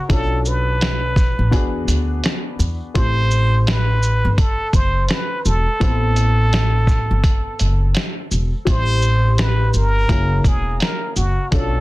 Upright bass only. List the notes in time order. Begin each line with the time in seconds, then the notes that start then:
0.10 B1
1.39 A1
1.52 E2
1.88 D2
2.59 E2
2.96 A1
4.25 G1
4.74 F#1
5.45 E1
5.81 A1
7.11 G1
7.61 F#1
8.31 E1
8.67 A1
9.74 G1
10.10 F#1
10.45 E1
11.16 F#1
11.52 B1